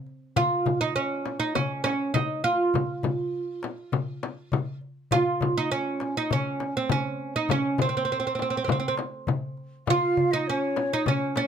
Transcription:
0.06 darbuka ka
0.36 F4, darbuka dum, frame drum
0.66 darbuka dum, frame drum
0.80 D#4, darbuka ka
0.96 C#4
1.26 darbuka tek, frame drum
1.40 D#4
1.55 C#4, frame drum, darbuka dum
1.84 C#4, darbuka tek, frame drum
2.14 D#4, darbuka dum, frame drum
2.44 F4, darbuka ka
2.74 darbuka dum, frame drum
3.03 darbuka dum, frame drum
3.18 darbuka ka
3.33 darbuka ka
3.63 darbuka tek, frame drum
3.78 darbuka ka
3.92 darbuka dum, frame drum
4.23 darbuka tek, frame drum
4.52 darbuka dum, frame drum
4.81 darbuka ka
5.11 F4, darbuka dum, frame drum
5.41 darbuka dum, frame drum
5.56 D#4, darbuka ka
5.72 C#4, darbuka ka
6.00 darbuka tek, frame drum
6.17 D#4
6.31 C#4, darbuka dum, frame drum
6.60 darbuka tek, frame drum
6.77 C4
6.89 C#4, darbuka dum, frame drum
7.20 darbuka ka
7.36 D#4
7.49 C#4, darbuka dum, frame drum
7.78 C4, darbuka dum, frame drum
7.89 C4
7.94 C4, darbuka ka
8.05 C4
8.12 C4
8.20 C4
8.27 C4
8.35 C4
8.39 C4, frame drum
8.50 C4
8.57 C4
8.64 C4, darbuka dum
8.69 C4, frame drum
8.80 C4
8.88 C4
8.97 darbuka tek, frame drum
9.27 darbuka dum, frame drum
9.57 darbuka ka
9.87 F4 F5, darbuka dum, frame drum
10.17 darbuka dum
10.31 D#4 D#5, darbuka ka
10.47 C#4 C#5, darbuka ka
10.76 darbuka tek, frame drum
10.92 D#4, darbuka ka
11.06 C#4 D5, darbuka dum, frame drum
11.10 C#5
11.36 C#4 D5, darbuka tek, frame drum
11.40 C#5

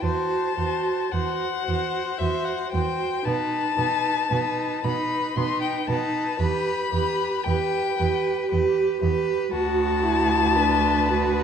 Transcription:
0.01 E2 F#4 C5 A5
0.56 E2 F#4 C5
1.12 E2 F#4 C5 F#5
1.66 E2 F#4 C5
2.18 E2 F#4 C5 E5
2.45 F#5
2.72 E2 F#4 C5 G5
3.25 B2 D#4 B4 A5
3.77 B2 D#4 B4
4.31 B2 D#4 B4
4.84 B2 D#4 B4 B5
5.36 B2 D#4 B4 C6
5.61 G5
5.87 B2 D#4 B4 A5
6.39 E2 G4 B4 B5
6.93 E2 G4 B4
7.44 E2 G4 B4 G5
7.98 E2 G4 B4
8.51 E2 G4 B4
9.01 E2 G4 B4
9.52 D2 F#4 A5
10.03 E4
10.55 D4 B4
11.08 F#4

